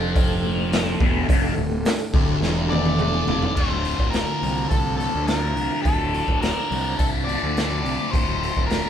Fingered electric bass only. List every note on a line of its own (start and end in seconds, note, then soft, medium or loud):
0.00 0.97 F1 medium
1.00 1.27 E1 medium
1.29 1.55 F1 medium
1.56 1.83 D1 medium
2.13 2.40 D1 medium
2.40 3.23 E1 medium
3.27 3.54 F1 medium
3.56 3.91 D1 medium
3.99 4.22 D1 medium
4.42 4.65 C2 medium
4.71 5.06 C2 medium
5.15 5.55 D2 medium
5.55 5.67 C2 medium
5.85 6.20 D1 medium
6.28 6.51 D1 medium
6.71 6.94 C2 medium
6.99 7.34 C2 medium
7.43 7.84 D2 medium
7.84 7.96 C2 medium
8.13 8.49 D1 medium
8.56 8.80 D1 medium